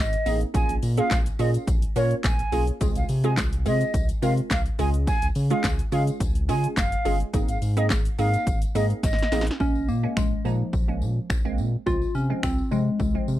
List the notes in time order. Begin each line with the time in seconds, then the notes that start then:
Already playing: G#1 D#5
0.13 closed hi-hat, shaker
0.26 A1 A#3 C4 D#4 G#4, open hi-hat, tambourine, shaker
0.41 closed hi-hat, shaker
0.54 A#1 A#3 C#4 F4 G#4 G#5, kick, closed hi-hat, tambourine, shaker
0.69 A#1, closed hi-hat, shaker
0.83 A#2, open hi-hat, tambourine, shaker
0.97 A#3 C#4 F4 G#4 F5, closed hi-hat, shaker
1.11 A#1, kick, snare, clap, closed hi-hat, tambourine, shaker
1.26 closed hi-hat, tambourine, shaker
1.39 A#2 A#3 C#4 F4 G#4 D#5, open hi-hat, tambourine, shaker
1.54 closed hi-hat, tambourine, shaker
1.67 A#1, kick, closed hi-hat, tambourine, shaker
1.82 closed hi-hat, shaker
1.96 A#2 A#3 C#4 F4 A#4 C#5, open hi-hat, tambourine, shaker
2.11 closed hi-hat, shaker
2.24 A#1 G#5, kick, snare, clap, closed hi-hat, tambourine, shaker
2.39 closed hi-hat, shaker
2.52 B1 A#3 C#4 F4 G#4, open hi-hat, tambourine, shaker
2.67 closed hi-hat, shaker
2.81 C2 G#3 C4 F4 G#4, kick, closed hi-hat, tambourine, shaker
2.96 C2 F5, closed hi-hat, tambourine, shaker
3.09 C3, open hi-hat, tambourine, shaker
3.24 G#3 C4 F4 G#4 G#5, closed hi-hat, shaker
3.37 C2, kick, snare, clap, closed hi-hat, tambourine, shaker
3.53 closed hi-hat, shaker
3.66 C3 G#3 C4 F4 G#4 D#5, open hi-hat, tambourine, shaker
3.81 closed hi-hat, tambourine, shaker
3.94 C2, kick, closed hi-hat, tambourine, shaker
4.09 closed hi-hat, tambourine, shaker
4.22 C3 G#3 C4 F4 A#4 F5, open hi-hat, tambourine, shaker
4.37 closed hi-hat, shaker
4.51 C2 F5, kick, snare, clap, closed hi-hat, tambourine, shaker
4.66 closed hi-hat, shaker
4.79 C#2 G#3 C#4 F4 G#4 G#5, open hi-hat, tambourine, shaker
4.94 closed hi-hat, shaker
5.07 G#5, kick, closed hi-hat, tambourine, shaker
5.22 C#2, closed hi-hat, tambourine, shaker
5.35 C#3, open hi-hat, tambourine, shaker
5.50 G#3 C#4 F4 G#4 F5, closed hi-hat, shaker
5.64 C#2, kick, snare, clap, closed hi-hat, tambourine, shaker
5.79 closed hi-hat, shaker
5.92 C#3 G#3 C#4 F4 G#4 F5, open hi-hat, tambourine, shaker
6.07 closed hi-hat, tambourine, shaker
6.20 C#2, kick, closed hi-hat, tambourine, shaker
6.35 closed hi-hat, shaker
6.49 C#3 G#3 C#4 F4 G#4 G#5, open hi-hat, tambourine, shaker
6.64 closed hi-hat, shaker
6.77 F#1 F5, kick, snare, clap, closed hi-hat, tambourine, shaker
6.92 closed hi-hat, shaker
7.05 G1 G#3 C#4 F4 G#4, open hi-hat, tambourine, shaker
7.20 closed hi-hat, shaker
7.33 G#1 A#3 C4 D#4 G#4, kick, closed hi-hat, tambourine, shaker
7.48 G#1 F5, closed hi-hat, tambourine, shaker
7.62 G#2, open hi-hat, tambourine, shaker
7.77 A#3 C4 D#4 G#4 D#5, closed hi-hat, shaker
7.90 G#1, kick, snare, clap, closed hi-hat, tambourine, shaker
8.05 closed hi-hat, shaker
8.18 G#2 A#3 C4 D#4 G#4 F5, open hi-hat, tambourine, shaker
8.34 closed hi-hat, tambourine, shaker
8.47 G#1, kick, closed hi-hat, tambourine, shaker
8.62 closed hi-hat, tambourine, shaker
8.75 G#2 A#3 C4 D#4 G#4 D#5, open hi-hat, tambourine, shaker
8.90 closed hi-hat, shaker
9.03 G#1 D#5, kick, snare, closed hi-hat, tambourine, shaker
9.13 snare
9.19 snare, closed hi-hat, shaker
9.32 A1 A#3 C4 D#4 G#4, snare, open hi-hat, tambourine, shaker
9.41 snare
9.47 snare, closed hi-hat, shaker
9.60 A#1 G#3 A#3 C#4, kick, tambourine
9.75 tambourine
9.88 A#2 A#3, tambourine
10.03 G#3 A#3 C#4
10.17 A#1 G#3, finger snap, kick, tambourine
10.45 A#2 F3 G#3 A#3 D#4, tambourine
10.73 A#1, kick, tambourine
10.88 G#3 A#3 C#4
11.02 A#2, tambourine
11.30 A#1, finger snap, kick, tambourine
11.45 G#3 A#3 C4
11.58 A#2, tambourine
11.86 C2 F3 G#3 C4 F4, kick, tambourine
12.02 tambourine
12.15 C3 C#4, tambourine
12.30 F3 G#3 C4
12.43 C2 C4, finger snap, kick, tambourine
12.58 tambourine
12.71 C3 F3 G#3 C4, tambourine
13.00 C2, kick, tambourine
13.15 F3 G#3 C4
13.28 C3, tambourine